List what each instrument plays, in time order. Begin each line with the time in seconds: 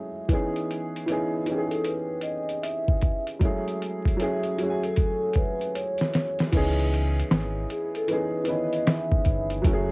Already playing: upright piano F#3 G#3 A3 C#4 E4 G#4
0.28 upright piano E3 B3 C#4 D#4, kick, closed hi-hat
0.34 upright piano G#4
0.56 closed hi-hat
0.71 closed hi-hat
0.96 closed hi-hat
1.06 upright piano E3 B3 C#4, closed hi-hat
1.10 upright piano D#4 G#4
1.46 upright piano E3 B3 C#4, vibraphone G#4, closed hi-hat
1.50 upright piano D#4 G4
1.58 upright piano G#4
1.70 vibraphone A4, closed hi-hat
1.84 vibraphone B4, closed hi-hat
2.22 vibraphone D#5, closed hi-hat
2.49 closed hi-hat
2.62 vibraphone E5, closed hi-hat
2.88 kick
3.01 kick, closed hi-hat
3.27 closed hi-hat
3.39 upright piano F#3 G#3 C#4, kick, closed hi-hat
3.43 upright piano A3 E4 G#4
3.68 closed hi-hat
3.82 closed hi-hat
4.05 kick, closed hi-hat
4.17 upright piano F#3 A3 C#4 E4, closed hi-hat
4.22 upright piano G#4
4.43 closed hi-hat
4.58 upright piano F#3 A3 C#4, vibraphone G#4, closed hi-hat
4.62 upright piano E4 F#4
4.70 upright piano G#5
4.75 vibraphone G#4
4.83 vibraphone A4, closed hi-hat
4.96 kick, closed hi-hat
5.33 vibraphone B4, kick, closed hi-hat
5.61 closed hi-hat
5.75 vibraphone C#5, closed hi-hat
5.98 snare, closed hi-hat
6.13 snare, closed hi-hat
6.39 snare, closed hi-hat
6.52 sub bass C#2, upright piano E3 B3 C#4 D#4, kick, closed hi-hat, crash, shaker
6.57 upright piano G#4
6.79 closed hi-hat
6.92 closed hi-hat, shaker
7.20 closed hi-hat
7.31 sub bass G#1, snare, closed hi-hat, shaker
7.69 vibraphone G#4, closed hi-hat, shaker
7.95 vibraphone A4, closed hi-hat, shaker
8.07 upright piano E3 B3 C#4 D#4, vibraphone B4, closed hi-hat, shaker
8.12 upright piano G#4
8.43 upright piano E3 B3 C#4, closed hi-hat
8.48 upright piano D#3 B4, vibraphone D#5, shaker
8.73 closed hi-hat
8.87 snare, closed hi-hat, shaker
9.12 kick
9.25 sub bass G1, kick, closed hi-hat, shaker
9.50 closed hi-hat, shaker
9.62 sub bass F#1, upright piano F#3 A3 C#4 E4, kick, closed hi-hat, shaker
9.67 upright piano F#4
9.73 upright piano G#4